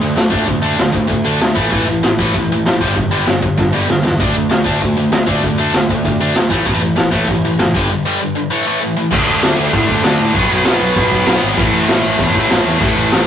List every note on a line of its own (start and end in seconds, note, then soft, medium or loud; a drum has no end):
0.02 0.15 D2 medium
0.02 0.15 D3 medium
0.02 0.15 A3 medium
0.16 0.31 D2 medium
0.16 0.29 D3 medium
0.16 0.29 A3 medium
0.16 snare loud
0.16 open hi-hat medium
0.30 0.46 D2 medium
0.30 0.45 D3 medium
0.30 0.45 A3 medium
0.30 0.47 D4 medium
0.30 kick medium
0.46 0.74 D2 medium
0.46 0.61 D3 medium
0.46 0.61 A3 medium
0.46 kick medium
0.46 open hi-hat medium
0.62 0.77 D3 medium
0.62 0.77 A3 medium
0.62 0.78 D4 medium
0.78 0.92 D2 medium
0.78 0.92 D3 medium
0.78 0.92 A3 medium
0.78 snare loud
0.78 open hi-hat medium
0.93 1.07 D2 medium
0.93 1.07 D3 medium
0.93 1.08 A3 medium
0.93 kick medium
1.08 1.23 D2 medium
1.08 1.23 D3 medium
1.08 1.24 A3 medium
1.08 kick medium
1.08 open hi-hat medium
1.25 1.39 D2 medium
1.25 1.38 D3 medium
1.25 1.39 A3 medium
1.25 1.41 D4 loud
1.40 1.55 D2 medium
1.40 1.55 D3 medium
1.40 1.55 A3 medium
1.40 snare loud
1.40 open hi-hat medium
1.55 1.70 A1 medium
1.55 1.69 A2 medium
1.55 1.70 E3 loud
1.55 1.70 A3 loud
1.55 kick medium
1.71 1.98 A1 medium
1.71 1.86 A2 medium
1.71 1.86 E3 medium
1.71 1.87 A3 medium
1.71 kick medium
1.71 open hi-hat medium
1.88 2.02 A2 medium
1.88 2.02 E3 medium
2.03 2.16 A1 medium
2.03 2.17 A2 medium
2.03 2.18 E3 medium
2.03 snare loud
2.03 open hi-hat medium
2.19 2.32 A1 medium
2.19 2.34 A2 medium
2.19 2.34 E3 medium
2.19 2.34 A3 medium
2.19 kick medium
2.34 2.47 A1 medium
2.34 2.49 A2 medium
2.34 2.50 E3 medium
2.34 kick medium
2.34 open hi-hat soft
2.50 2.63 A1 medium
2.50 2.65 A2 medium
2.50 2.65 E3 medium
2.65 2.79 A1 medium
2.65 2.80 A2 medium
2.65 2.81 E3 medium
2.65 snare loud
2.65 open hi-hat medium
2.81 2.94 G1 medium
2.81 2.96 G2 medium
2.81 2.96 D3 loud
2.81 2.96 G3 loud
2.81 kick medium
2.96 3.22 G1 medium
2.96 3.10 G2 medium
2.96 3.11 D3 medium
2.96 kick loud
2.96 open hi-hat medium
3.11 3.26 G2 medium
3.11 3.27 D3 medium
3.11 3.27 G3 medium
3.27 3.40 G1 medium
3.27 3.41 G2 medium
3.27 3.42 D3 medium
3.27 snare loud
3.27 open hi-hat medium
3.42 3.55 G1 medium
3.42 3.56 G2 medium
3.42 3.57 D3 medium
3.42 kick medium
3.57 3.71 G1 medium
3.57 3.72 G2 medium
3.57 3.72 D3 medium
3.57 kick medium
3.57 snare medium
3.73 3.87 G1 medium
3.73 3.86 G2 medium
3.73 3.86 D3 medium
3.73 3.88 G3 medium
3.87 4.02 G1 medium
3.87 4.02 G2 medium
3.87 4.02 D3 medium
3.87 snare medium
4.03 4.18 E2 medium
4.03 4.18 G2 medium
4.03 4.18 D3 medium
4.03 snare medium
4.20 4.45 D2 medium
4.20 4.33 D3 medium
4.20 4.34 A3 medium
4.20 4.35 D4 medium
4.20 kick loud
4.20 open hi-hat medium
4.35 4.48 D3 medium
4.35 4.49 A3 medium
4.50 4.64 D2 medium
4.50 4.63 D3 medium
4.50 4.64 A3 medium
4.50 snare loud
4.50 open hi-hat medium
4.64 4.79 D2 medium
4.64 4.80 D3 medium
4.64 4.80 A3 medium
4.64 4.81 D4 loud
4.64 kick medium
4.81 4.94 D2 medium
4.81 4.95 D3 medium
4.81 4.96 A3 medium
4.81 kick medium
4.81 open hi-hat soft
4.97 5.10 D2 medium
4.97 5.11 D3 medium
4.97 5.11 A3 medium
5.12 5.25 D2 medium
5.12 5.25 D3 medium
5.12 5.26 A3 medium
5.12 snare loud
5.12 open hi-hat medium
5.26 5.40 D2 medium
5.26 5.42 D3 medium
5.26 5.42 A3 medium
5.26 5.42 D4 loud
5.26 kick medium
5.43 5.69 D2 medium
5.43 5.57 D3 medium
5.43 5.58 A3 medium
5.43 kick medium
5.43 open hi-hat medium
5.58 5.73 D3 medium
5.58 5.73 A3 medium
5.58 5.74 D4 medium
5.74 5.87 D2 medium
5.74 5.88 D3 medium
5.74 5.88 A3 medium
5.74 snare loud
5.74 open hi-hat medium
5.89 6.02 D2 medium
5.89 6.04 D3 medium
5.89 6.04 A3 medium
5.89 kick medium
6.05 6.18 D2 loud
6.05 6.19 D3 medium
6.05 6.19 A3 medium
6.05 kick loud
6.05 open hi-hat medium
6.20 6.33 D2 medium
6.20 6.34 D3 medium
6.20 6.34 A3 medium
6.20 6.35 D4 loud
6.35 6.48 D2 medium
6.35 6.49 D3 medium
6.35 6.50 A3 medium
6.35 snare loud
6.35 open hi-hat medium
6.50 6.64 A1 medium
6.50 6.64 A2 medium
6.50 6.65 E3 loud
6.50 6.65 A3 loud
6.50 kick medium
6.65 6.92 A1 medium
6.65 6.79 A2 medium
6.65 6.80 E3 loud
6.65 6.81 A3 loud
6.65 kick medium
6.65 open hi-hat medium
6.81 6.95 A2 medium
6.81 6.95 E3 medium
6.96 7.10 A1 medium
6.96 7.10 A2 medium
6.96 7.10 E3 medium
6.96 snare loud
6.96 open hi-hat medium
7.11 7.25 A1 medium
7.11 7.27 A2 medium
7.11 7.27 E3 medium
7.11 7.27 A3 loud
7.11 kick medium
7.28 7.41 A1 medium
7.28 7.42 A2 medium
7.28 7.43 E3 medium
7.28 kick medium
7.28 open hi-hat medium
7.43 7.56 A1 medium
7.43 7.58 A2 medium
7.43 7.58 E3 medium
7.59 7.71 F#1 loud
7.59 7.73 A2 medium
7.59 7.73 E3 medium
7.59 snare loud
7.59 open hi-hat medium
7.74 7.87 G1 medium
7.74 7.89 G2 medium
7.74 7.89 D3 loud
7.74 7.90 G3 loud
7.74 kick medium
7.91 8.04 G2 medium
7.91 8.04 D3 medium
8.05 8.20 G2 medium
8.05 8.20 D3 medium
8.05 8.20 G3 loud
8.21 8.34 G2 medium
8.21 8.35 D3 medium
8.35 8.50 G2 medium
8.35 8.50 D3 medium
8.50 8.65 A2 medium
8.50 8.65 E3 loud
8.50 8.66 A3 loud
8.66 8.80 A2 medium
8.66 8.80 E3 medium
8.66 8.81 A3 loud
8.81 8.95 A2 medium
8.81 8.96 E3 medium
8.97 9.10 A2 medium
8.97 9.11 E3 medium
9.11 9.22 D2 medium
9.11 10.34 D3 medium
9.11 9.88 D3 medium
9.11 10.34 A3 loud
9.11 9.89 A3 loud
9.11 10.35 D4 loud
9.11 kick loud
9.11 crash loud
9.11 crash medium
9.15 9.87 D4 loud
9.28 9.38 D2 medium
9.28 crash medium
9.43 9.53 D2 medium
9.43 snare loud
9.43 crash medium
9.58 9.68 D2 medium
9.58 crash medium
9.73 9.84 A2 loud
9.73 kick loud
9.73 crash medium
9.88 9.99 D2 medium
9.88 10.02 D3 medium
9.88 10.04 A3 medium
9.88 10.03 D4 medium
9.88 kick medium
9.88 crash medium
10.03 10.14 D2 medium
10.03 10.33 D3 medium
10.03 10.35 A3 medium
10.03 10.36 D4 medium
10.03 snare loud
10.03 crash medium
10.20 10.30 A2 medium
10.20 crash medium
10.34 10.44 B1 loud
10.34 11.10 B2 medium
10.34 11.56 B2 medium
10.34 11.57 F#3 loud
10.34 11.12 F#3 medium
10.34 11.58 B3 loud
10.34 11.10 B3 loud
10.34 kick loud
10.34 crash medium
10.50 10.61 B1 medium
10.50 crash medium
10.65 10.75 B1 medium
10.65 snare loud
10.65 crash loud
10.81 10.91 B1 medium
10.81 crash medium
10.96 11.06 B1 loud
10.96 kick loud
10.96 crash medium
11.11 11.22 B1 medium
11.11 11.26 B2 medium
11.11 11.27 F#3 medium
11.11 11.26 B3 medium
11.11 kick medium
11.11 crash medium
11.26 11.37 B1 medium
11.26 11.57 B2 medium
11.26 11.58 F#3 medium
11.26 11.59 B3 medium
11.26 snare loud
11.26 crash loud
11.42 11.52 G#1 loud
11.42 crash medium
11.57 11.68 A1 loud
11.57 12.78 A2 medium
11.57 12.34 A2 medium
11.57 12.80 E3 loud
11.57 12.35 E3 loud
11.57 12.82 A3 loud
11.57 kick loud
11.57 crash medium
11.62 12.34 A3 loud
11.73 11.83 A1 medium
11.73 crash medium
11.88 11.99 A1 loud
11.88 snare loud
11.88 crash medium
12.03 12.14 A1 medium
12.03 crash medium
12.18 12.29 E2 loud
12.18 kick loud
12.18 crash medium
12.34 12.44 A1 medium
12.34 12.47 A2 medium
12.34 12.50 E3 medium
12.34 12.52 A3 medium
12.34 kick medium
12.34 crash medium
12.49 12.60 A1 loud
12.49 12.78 A2 medium
12.49 12.80 E3 medium
12.49 12.83 A3 medium
12.49 snare loud
12.49 crash medium
12.65 12.76 E2 medium
12.65 crash medium
12.79 12.91 A1 medium
12.79 13.27 A2 medium
12.79 13.27 E3 medium
12.79 13.27 E3 loud
12.79 13.27 A3 loud
12.79 kick loud
12.79 crash medium
12.97 13.07 A1 medium
12.97 crash medium
13.12 13.23 A1 medium
13.12 snare loud
13.12 crash medium